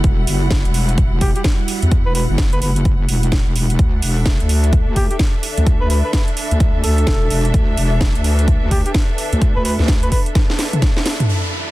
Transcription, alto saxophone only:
1.21 G4
1.36 G4
2.06 B4
2.15 B4
2.53 B4
2.62 B4
4.96 G4
5.10 G4
5.81 B4
5.90 B4
6.05 B4
6.14 B4
6.84 A4
8.71 G4
8.86 G4
9.56 B4
9.65 B4
10.03 B4
10.12 B4

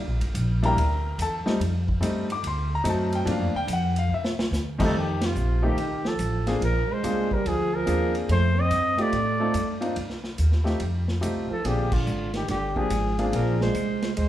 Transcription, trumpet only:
4.84 A4
4.99 G4
5.26 F4
5.67 G4
6.08 A4
6.64 A#4
6.92 C5
7.33 A#4
7.48 G#4
7.76 A#4
8.32 C5
8.60 D#5
9.01 D5
11.53 A4
11.66 G4
11.93 F4
12.36 G4
12.50 G4
12.77 G#4
13.35 A#4
13.62 C5
14.19 C5

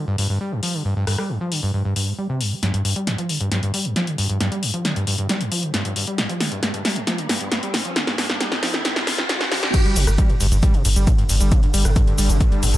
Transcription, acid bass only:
0.07 G2
0.18 G2
0.30 G2
0.41 G3
0.52 G2
0.63 F3
0.74 D3
0.85 G2
0.96 G2
1.07 G2
1.18 G3
1.29 G2
1.41 F3
1.52 D3
1.63 G2
1.74 G2
1.85 G2
1.96 G2
2.07 G#2
2.18 G3
2.30 C3
2.41 G2
2.52 F3
2.63 G2
2.74 G2
2.85 G2
2.96 G3
3.07 G2
3.18 F3
3.29 D3
3.41 G2
3.52 G2
3.63 G2
3.74 G3
3.85 G2
3.96 F3
4.07 D3
4.18 G2
4.30 G2
4.40 G2
4.52 G3
4.63 G2
4.74 F3
4.85 D3
4.96 G2
5.07 G2
5.18 G2
5.29 G3
5.41 G2
5.52 F3
5.63 D3
5.74 G2
5.85 G2
5.96 G2
6.07 G3
6.18 G2
6.29 F3
6.40 D3
6.52 G2
6.63 G2
6.74 G2
6.85 G3
6.96 G2
7.07 F3
7.18 D3
7.29 G2
7.41 G2
7.52 G2
7.63 G3
7.74 G2
7.85 F3
7.96 D3
8.07 G2
8.18 G2
8.29 G2
8.40 G3
8.52 G2
8.63 F3
8.74 D3
8.85 G2
8.96 G2
9.07 F2
9.19 G2
9.30 G#2
9.41 G2
9.52 F3
9.63 D3
9.74 G2
9.85 G3
9.96 C3
10.07 G2
10.18 G3
10.30 G2
10.40 G2
10.52 G2
10.63 G3
10.74 C3
10.85 G2
10.96 G3
11.07 G2
11.18 G2
11.29 G2
11.41 G3
11.52 C3
11.63 G2
11.74 G3
11.85 G2
11.96 G2
12.07 G2
12.18 G3
12.30 C3
12.41 G2
12.52 G3
12.63 G2
12.74 G2

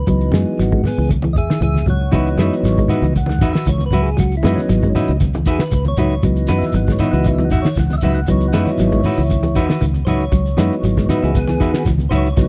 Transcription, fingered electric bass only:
0.07 C#2
0.32 F#2
0.59 G#1
0.98 C#2
1.37 E2
1.61 C#2
1.87 C#2
2.13 C#2
2.38 F#2
2.63 G#1
3.02 C#2
3.41 E2
3.67 C#2
3.92 C#2
4.19 C#2
4.44 F#2
4.69 G#1
5.09 C#2
5.47 E2
5.72 C#2
5.97 C#2
6.23 C#2
6.49 F#2
6.74 G#1
7.13 C#2
7.51 E2
7.77 C#2
8.04 C#2
8.28 C#2
8.54 F#2
8.79 G#1
9.18 C#2
9.56 E2
9.82 C#2
10.07 C#2
10.32 C#2
10.58 F#2
10.83 G#1
11.23 C#2
11.61 E2
11.86 C#2
12.12 C#2
12.37 C#2

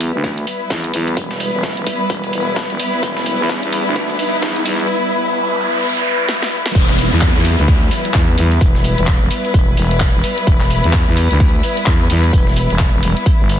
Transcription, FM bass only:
Already playing: E2
0.14 D2
0.70 E2
0.94 E2
1.54 E1
1.77 E1
2.10 E1
2.33 E1
2.70 E1
3.03 E1
3.40 E2
3.63 E2
3.86 D2
4.42 E2
4.66 E2
6.75 E1
7.12 E2
7.35 E2
7.59 D2
8.15 E2
8.38 E2
8.61 E1
8.98 E1
9.21 E1
9.54 E1
9.77 E1
10.14 E1
10.47 E1
10.84 E2
11.07 E2
11.31 D2
11.87 E2
12.10 E2
12.33 E1
12.70 E1
12.93 E1
13.03 E1
13.40 G1

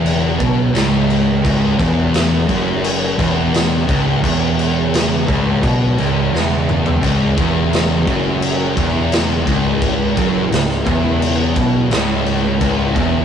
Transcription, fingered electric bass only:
Already playing: E1
0.41 B1
0.74 C#1
1.44 C#1
1.79 E1
2.49 F#1
3.19 E1
3.89 C#1
4.24 E1
5.28 C#1
5.63 B1
5.97 C#1
6.32 E1
7.03 C#1
7.38 E1
8.07 F#1
8.77 E1
9.47 C#1
10.17 F#1
10.50 C#1
10.87 E1
11.56 B1
11.90 C#1
12.61 C#1
12.96 E1

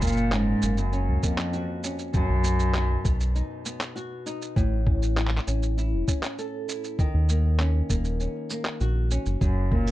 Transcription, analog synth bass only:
Already playing: F#1
0.63 F#1
1.08 C#2
2.29 B1
3.05 B1
4.56 A1
5.47 A1
5.93 E1
7.14 D#2
7.90 D#1
8.81 A#1
9.26 F#1
9.42 F#1

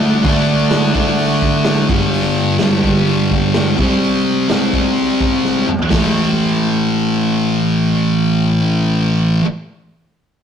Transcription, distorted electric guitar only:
Already playing: D3 A3 D4
0.23 D3 A3
0.28 D4
0.94 A3 D4
1.00 D3
1.89 G2 D3
1.93 G3
2.59 G2 D3
2.65 G3
3.77 C3 G3
3.82 C4
4.49 C3 G3
4.53 C4
5.90 A2 E3
5.95 A3

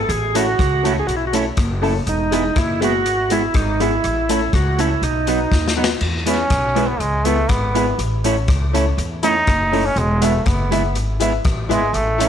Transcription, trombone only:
6.28 C#4
6.88 B3
7.00 G#3
7.26 A3
7.50 B3
9.23 D#4
9.86 C#4
9.99 G#3
10.25 A3
10.48 B3
11.71 G#3
11.94 A3

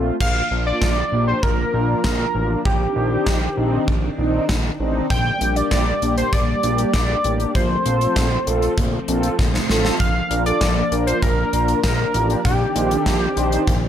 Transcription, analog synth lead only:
0.21 F5
0.67 D5
0.82 D5
1.28 C5
1.43 A#4
2.04 A#4
2.65 G4
5.10 G5
5.56 D5
5.71 D5
6.18 C5
6.33 D5
6.94 D5
7.55 C5
10.00 F5
10.46 D5
10.61 D5
11.07 C5
11.22 A#4
11.84 A#4
12.45 G4

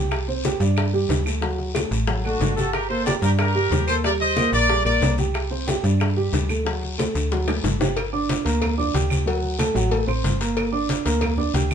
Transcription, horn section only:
2.24 D4 F#4
2.56 F#4 A4
2.72 G4 A#4
2.88 A4 C5
3.05 A#4 D5
3.22 G4 A#4
3.38 G4 A#4
3.87 A4 C5
4.03 A#4 D5
4.19 C5 D#5
4.52 A#4 D5
4.85 A#4 D5

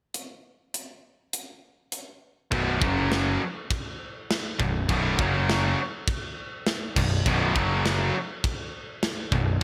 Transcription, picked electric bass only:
2.52 B0
2.81 F#1
4.60 B0
4.89 B0
5.19 F#1
6.96 B0
7.26 B0
7.56 F#1
9.32 B0

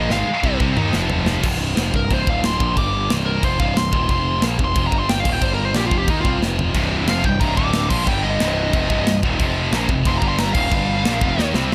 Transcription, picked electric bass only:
0.10 G#1
0.26 muted picked electric bass stroke
0.43 C2
0.60 C2
0.78 D#2
0.94 F1
1.44 C1
1.77 F1
1.94 C1
2.11 C1
2.27 D1
2.61 A#1
2.77 G1
3.11 C1
3.43 F1
3.60 C1
3.76 C1
3.93 D#1
4.10 F1
4.43 A#1
4.59 F1
4.76 F1
4.92 G1
5.26 D#1
5.41 G1
5.75 A#1
5.91 F1
6.08 D#2
6.25 C2
6.39 F1
6.75 C1
7.06 F1
7.24 C1
7.40 C1
7.57 D1
7.91 A#1
8.07 G1
8.40 C1
8.73 F1
8.90 C1
9.06 C1
9.23 D#1
9.40 F1
9.73 A#1
9.89 F1
10.06 F1
10.22 G1
10.55 D#1
10.72 G1
11.04 A#1
11.22 F1
11.38 D#2
11.54 C2

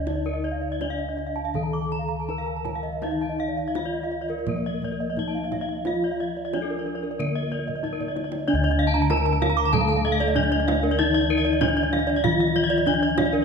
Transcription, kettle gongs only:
Already playing: D2
0.07 D#4
0.80 D#4
1.55 D#3
2.29 D#4
3.02 D#4
3.76 D#4
4.47 F3
5.17 D#4
5.86 F4
6.53 D#4
7.19 D3
7.85 D#4
8.48 D4
8.53 D2
10.99 D#4
11.62 D#4
12.25 D#3
12.88 D#4

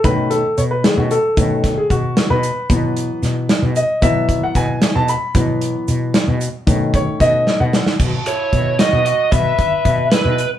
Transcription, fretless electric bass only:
0.04 B2
0.58 B2
0.98 B2
1.37 B2
1.90 B2
2.30 B2
2.70 B2
3.22 B2
3.62 B2
4.02 B2
4.55 B2
4.96 B2
5.35 B2
5.88 B2
6.28 B2
6.67 B2
7.20 B2
7.60 B2
8.00 B2
8.53 B2
8.93 B2
9.32 B2
9.85 B2
10.25 B2

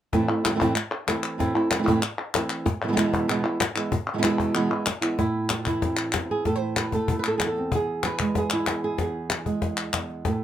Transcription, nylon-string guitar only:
0.13 A2 E3 A3 C4 E4
0.28 A3 C4 E4
0.44 A3 C4 E4
0.51 E3 A3 C4 E4
0.56 E3 A3 C4 E4
0.60 A2 E3 A3 C4 E4
0.75 muted nylon-string guitar stroke
1.07 E3 A3 C4 E4
1.38 A2 E3 A3 C4 E4
1.55 A3 C4 E4
1.70 E3 A3 C4 E4
1.75 E3 C4 E4
1.79 A3 C4 E4
1.83 E3 A3 C4 E4
1.87 A2 E3 A3 C4 E4
2.02 muted nylon-string guitar stroke
2.34 E3 A3 C4 E4
2.66 muted nylon-string guitar stroke
2.83 B2 E3 G#3 B3 E4
2.88 B2 E3 G#3 B3 E4
2.93 B2 E3 G#3 B3 E4
2.97 E2 B2 E3 G#3 B3 E4
3.28 E2 B2 E3 G#3 B3 E4
3.43 E3 G#3 B3 E4
3.60 muted nylon-string guitar stroke
3.76 E3 G#3 B3 E4
3.92 muted nylon-string guitar stroke
4.14 B2 E3 G#3 B3 E4
4.18 B2 E3 G#3 B3 E4
4.23 E2 B2 E3 G#3 B3 E4
4.54 E2 B2 E3 G#3 B3 E4
4.70 E3 G#3 B3 E4
4.86 muted nylon-string guitar stroke
5.01 E3 G#3 B3 E4
5.18 A2 E4
5.51 F4
5.65 E3 E4
5.83 C4
6.14 E2
6.31 G#4
6.45 A2 A4
6.55 C5
6.62 E4
6.79 B4
6.93 A3 A4
7.11 E4
7.19 B4
7.28 A4
7.38 E2 G#4
7.47 A4
7.58 C4
7.72 E2 G#4
8.06 B4
8.21 G#3
8.38 G#4
8.53 E4
8.68 E2
8.84 G#4
8.99 E2 G#4
9.46 G#3
9.93 E2
10.25 A2 A4

